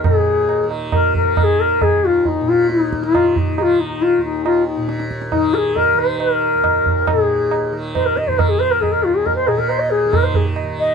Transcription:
0.00 1.82 D#2 medium
0.00 2.41 A#2 medium
0.00 0.64 D#3 medium
0.00 0.66 G#4 medium
0.04 tabla na loud
0.04 tabla ge medium
0.49 tabla na medium
0.64 1.24 D#3 medium
0.71 tabla na medium
0.92 1.13 A#4 medium
0.92 tabla na medium
0.92 tabla ge medium
1.15 1.38 A#4 medium
1.15 tabla ge soft
1.24 3.00 D#3 medium
1.37 1.44 A#4 medium
1.37 tabla na medium
1.37 tabla ge medium
1.43 1.62 G#4 medium
1.60 1.84 A#4 medium
1.81 4.18 D#2 medium
1.81 2.06 G#4 loud
1.81 tabla na medium
1.81 tabla ge medium
2.05 2.29 F4 medium
2.25 2.50 D#4 medium
2.25 tabla tin medium
2.25 tabla ge medium
2.41 4.77 A#2 medium
2.49 2.70 F4 medium
2.70 3.04 D#4 medium
2.70 tabla te medium
2.81 tabla te medium
2.93 tabla ke medium
3.00 3.59 D#3 medium
3.00 3.39 F4 medium
3.00 tabla te medium
3.15 tabla na medium
3.15 tabla ge medium
3.36 3.58 D#4 medium
3.36 tabla ge medium
3.58 5.36 D#3 medium
3.58 3.63 G#4 medium
3.58 tabla na medium
3.62 3.82 F4 medium
3.80 4.03 D#4 medium
4.02 4.23 F4 medium
4.02 tabla tin medium
4.18 6.54 D#2 medium
4.24 4.44 D#4 medium
4.46 4.66 F4 medium
4.46 tabla na medium
4.67 5.08 D#4 medium
4.77 7.12 A#2 medium
4.89 tabla te medium
5.00 tabla te medium
5.11 tabla ke medium
5.22 tabla te medium
5.32 5.55 D#4 medium
5.32 tabla na medium
5.32 tabla ge medium
5.36 5.94 D#3 medium
5.54 5.78 G#4 medium
5.54 5.58 A#4 medium
5.76 6.01 A#4 medium
5.76 tabla tin medium
5.76 tabla ge medium
5.94 7.72 D#3 medium
5.94 tabla na medium
5.99 6.19 C5 medium
6.20 7.10 A#4 medium
6.20 tabla na medium
6.54 8.89 D#2 medium
6.64 tabla na medium
6.64 tabla ge medium
6.86 tabla ge soft
7.07 7.74 G#4 medium
7.07 tabla na loud
7.07 tabla ge medium
7.12 9.46 A#2 medium
7.51 tabla na medium
7.72 8.30 D#3 medium
7.72 tabla na medium
7.95 8.07 C5 medium
7.95 tabla na medium
7.95 tabla ge medium
8.06 8.18 A#4 medium
8.17 8.29 D#5 medium
8.17 tabla te medium
8.28 10.05 D#3 medium
8.28 8.40 C5 medium
8.28 tabla ge medium
8.38 8.50 A#4 medium
8.38 tabla na medium
8.38 tabla ge medium
8.49 8.61 G#4 medium
8.59 8.73 C5 medium
8.71 8.83 A#4 medium
8.81 8.94 G#4 medium
8.81 tabla na medium
8.81 tabla ge medium
8.89 10.95 D#2 medium
8.89 9.05 A#4 medium
9.04 9.16 F4 medium
9.15 9.27 G#4 medium
9.26 9.35 A#4 medium
9.26 tabla tin medium
9.26 tabla ge medium
9.35 9.49 C5 medium
9.47 10.95 A#2 medium
9.47 9.60 G#4 medium
9.47 tabla na medium
9.58 9.70 A#4 medium
9.58 tabla ke medium
9.69 9.81 C5 medium
9.69 tabla na medium
9.79 9.92 D#5 medium
9.90 10.15 G#4 medium
10.05 10.64 D#3 medium
10.13 10.25 A#4 medium
10.13 tabla na medium
10.13 tabla ge medium
10.23 10.37 C5 medium
10.34 10.46 G#4 medium
10.34 tabla ge medium
10.56 tabla na medium
10.64 10.95 D#3 medium
10.79 10.95 D#5 loud

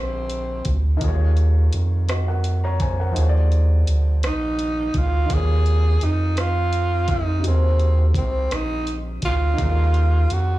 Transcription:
0.00 0.62 A#1 medium
0.00 0.95 C3 medium
0.00 0.76 C4 medium
0.00 0.96 D#4 soft
0.00 0.97 F#4 soft
0.00 0.98 G#4 soft
0.00 0.99 A#4 soft
0.00 1.00 C5 medium
0.30 closed hi-hat soft
0.65 0.98 D2 medium
0.65 kick medium
0.65 closed hi-hat soft
0.97 3.09 D#3 medium
0.97 3.10 D#4 medium
1.01 1.69 D#2 loud
1.01 2.06 F4 medium
1.01 2.08 G#4 medium
1.01 kick medium
1.01 closed hi-hat medium
1.06 2.09 A#4 medium
1.06 2.10 C#5 medium
1.37 closed hi-hat soft
1.73 3.12 F2 medium
1.73 closed hi-hat medium
2.09 2.26 F#4 soft
2.09 2.26 D#5 soft
2.09 cross-stick loud
2.09 closed hi-hat medium
2.28 2.62 A#4 soft
2.28 2.61 F#5 medium
2.44 closed hi-hat soft
2.64 2.80 C#5 medium
2.64 2.80 A#5 medium
2.80 2.98 C5 soft
2.80 2.98 G#5 medium
2.80 kick medium
2.80 closed hi-hat soft
3.00 3.33 A#4 soft
3.00 3.33 F#5 medium
3.12 5.24 F3 medium
3.12 5.25 D#4 medium
3.16 3.84 D#2 medium
3.16 5.26 G#4 medium
3.16 5.28 C5 medium
3.16 closed hi-hat medium
3.23 3.26 C#5 medium
3.29 5.33 D5 medium
3.52 closed hi-hat soft
3.87 4.26 D2 medium
3.87 closed hi-hat medium
4.23 4.91 A#1 medium
4.23 4.99 D#4 medium
4.23 cross-stick loud
4.23 closed hi-hat medium
4.59 closed hi-hat soft
4.94 5.27 D2 medium
4.94 5.35 F4 medium
4.94 kick medium
4.94 closed hi-hat soft
5.26 7.38 D#3 medium
5.26 7.39 D#4 soft
5.30 5.98 D#2 medium
5.30 7.41 F4 medium
5.30 6.06 G#4 loud
5.30 kick medium
5.30 closed hi-hat medium
5.34 7.42 A#4 soft
5.34 7.44 C#5 medium
5.66 closed hi-hat soft
6.01 7.47 F2 medium
6.01 6.41 D#4 medium
6.01 closed hi-hat soft
6.37 7.12 F4 medium
6.37 cross-stick loud
6.37 closed hi-hat medium
6.73 closed hi-hat soft
7.08 7.45 D#4 medium
7.08 kick medium
7.08 closed hi-hat soft
7.39 9.52 C3 medium
7.39 9.53 D#4 soft
7.44 8.12 D#2 loud
7.44 9.54 F#3 soft
7.44 8.13 C4 medium
7.44 9.55 G#4 soft
7.44 closed hi-hat medium
7.48 9.56 A#4 soft
7.48 9.58 C5 medium
7.79 closed hi-hat soft
8.14 8.47 C2 medium
8.14 8.55 C4 medium
8.14 kick medium
8.14 closed hi-hat medium
8.51 9.19 A#1 medium
8.51 8.97 D#4 medium
8.51 cross-stick loud
8.51 closed hi-hat medium
8.87 closed hi-hat soft
9.22 9.55 D2 medium
9.22 10.34 F4 loud
9.22 kick medium
9.22 closed hi-hat medium
9.54 10.59 D#3 soft
9.54 10.59 D#4 medium
9.58 10.26 D#2 medium
9.58 10.59 G#4 soft
9.58 10.59 F5 soft
9.58 kick medium
9.58 closed hi-hat medium
9.63 10.59 A#4 medium
9.94 closed hi-hat soft
10.30 10.59 F2 medium
10.30 10.59 F#4 medium
10.30 closed hi-hat medium

